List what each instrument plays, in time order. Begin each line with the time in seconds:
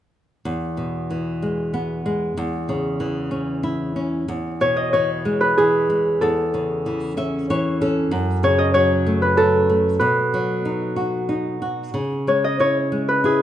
0.45 nylon-string guitar E2
0.77 nylon-string guitar B2
1.10 nylon-string guitar E3
1.42 nylon-string guitar G#3
1.74 nylon-string guitar B3
2.06 nylon-string guitar G#3
2.37 nylon-string guitar E2
2.69 nylon-string guitar C#3
3.00 nylon-string guitar E3
3.31 nylon-string guitar C#4
3.63 nylon-string guitar E4
3.96 nylon-string guitar C#4
4.28 nylon-string guitar E2
4.61 nylon-string guitar B2, harp C#5
4.77 harp D#5
4.93 nylon-string guitar E3, harp C#5
5.25 nylon-string guitar G#3
5.41 harp B4
5.58 nylon-string guitar E3, harp G#4
5.90 nylon-string guitar G#3
6.21 nylon-string guitar E2, harp A4
6.54 nylon-string guitar C#3
6.86 nylon-string guitar E3
7.17 nylon-string guitar C#4 E5
7.50 nylon-string guitar E3 C#5
7.81 nylon-string guitar C#4 A4
8.11 nylon-string guitar F#2
8.43 nylon-string guitar C#3, harp C#5
8.58 harp D#5
8.74 nylon-string guitar F#3, harp C#5
9.06 nylon-string guitar A3
9.22 harp B4
9.37 nylon-string guitar F#3, harp A4
9.70 nylon-string guitar A3
10.00 nylon-string guitar B2, harp B4
10.34 nylon-string guitar F#3
10.65 nylon-string guitar D#4
10.96 nylon-string guitar F#4
11.29 nylon-string guitar D#4
11.62 nylon-string guitar F#4
11.94 nylon-string guitar C#3
12.27 nylon-string guitar G#3, harp C#5
12.44 harp D#5
12.60 nylon-string guitar E4, harp C#5
12.92 nylon-string guitar G#3
13.09 harp B4
13.24 nylon-string guitar E4, harp G#4